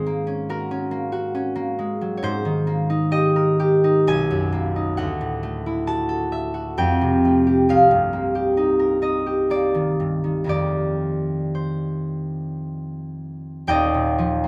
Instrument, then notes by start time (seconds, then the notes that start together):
harp
Already playing: G#2 G#3 G#4 A#4 C5
0.07 A#3
0.27 C#4
0.49 F#4 A#4
0.71 C#4
0.91 A#3
1.12 F#4
1.35 C#4
1.56 A#3
1.79 G#3
2.01 F#3
2.17 C#5
2.23 G#2 C5
2.45 D#3
2.67 A#3
2.90 D#4
3.11 G4 D#5
3.36 A#4
3.60 G4
3.84 D#4
4.07 B1 G#5
4.30 F#2
4.52 A#3
4.76 D#4
4.97 D2 F#5
5.21 A2
5.43 A3
5.66 E4
5.87 F#4 A5
6.09 A4
6.32 E5
6.54 F#4
6.78 F2 G5
7.01 C3
7.25 A3
7.47 G4
7.69 C2 F5
7.91 G2
8.13 A#3
8.35 G4
8.57 D#4
8.79 A#4
9.02 D#4 D#5
9.26 G4
9.50 A#3 D5
9.75 D#3
10.00 G2
10.24 D#3
10.44 F2 D#3 A3
10.49 G4 D5
11.55 C5
13.67 D#1 D#2 D5 D#5 G5
13.94 A#2
14.18 F3
14.44 A#3